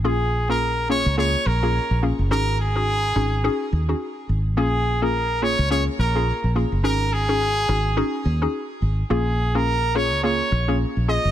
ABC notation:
X:1
M:4/4
L:1/16
Q:"Swing 16ths" 1/4=106
K:Bbm
V:1 name="Trumpet"
A3 B3 d2 d2 B4 z2 | B2 A8 z6 | A3 B3 d2 d2 B4 z2 | B2 A8 z6 |
A3 B3 d2 d4 z2 e2 |]
V:2 name="Synth pluck"
[B,DFA]3 [B,DFA] z2 [B,DFA] z [B,DFA] z2 [B,DFA] z2 [B,DFA] z | [DEGA]3 [DEGA] z2 [DEGA] z [DEGA] z2 [DEGA] z4 | [B,DFA]3 [B,DFA] z2 [B,DFA] z [B,DFA] z2 [B,DFA] z2 [B,DFA] z | [DEGA]3 [DEGA] z2 [DEGA] z [DEGA] z2 [DEGA] z4 |
[B,DFA]3 [B,DFA] z2 [B,DFA] z [B,DFA] z2 [B,DFA] z2 [B,DFA] z |]
V:3 name="Fingered electric bass" clef=bass
B,,,6- B,,, D,,3 B,,,3 B,,,2 G,,, | A,,,6 A,,,3 z E,,2 z2 A,,,2 | B,,,6- B,,, D,,3 B,,,3 B,,,2 G,,, | A,,,6 A,,,3 z E,,2 z2 A,,,2 |
B,,,6- B,,, D,,3 B,,,3 B,,,2 G,,, |]